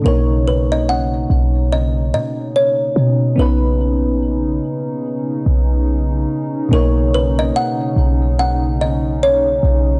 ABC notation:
X:1
M:4/4
L:1/16
Q:"Swing 16ths" 1/4=72
K:B
V:1 name="Kalimba"
A2 B d f4 d2 d2 c4 | B6 z8 z2 | A2 B d f4 f2 d2 c4 |]
V:2 name="FM electric piano"
[B,,A,Dc]16 | [B,CDB]16 | [B,,A,Dc]16 |]
V:3 name="Analog synth pad"
[C,CD]16- | [C,CD]16- | [C,CD]16 |]
V:4 name="808-style bass" clef=bass
B,,,6 B,,,4 B,,4 B,,2 | B,,,3 A,,,3 z4 B,,,4 z2 | B,,,4 z2 B,,,8 B,,,2 |]